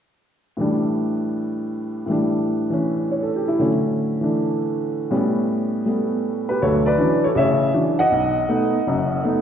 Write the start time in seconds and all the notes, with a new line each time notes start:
0.57 A2 E3 G3
0.61 D4
2.06 A2 E3 G3
2.11 D4
2.70 E3 C#4
3.11 C#5
3.23 A4
3.36 G4
3.48 E4
3.59 A2 D3 F#3 C#4
4.21 E3 A3 D4
5.11 A2 G3 B3 C#4
5.86 G3 A3 B3
6.49 G4 B4
6.62 D2 F#3 A4 C#5
6.86 B4 D5
6.98 E3 F#3 C#4 D4
7.24 A4 C#5
7.35 A1 C#3 C#5 E5
7.74 E3 F#3 C#4 D4
7.99 D#5 F#5
8.12 B1
8.49 A3 B3 D#4
8.87 F#1 F#2
9.24 A3 B3 D#4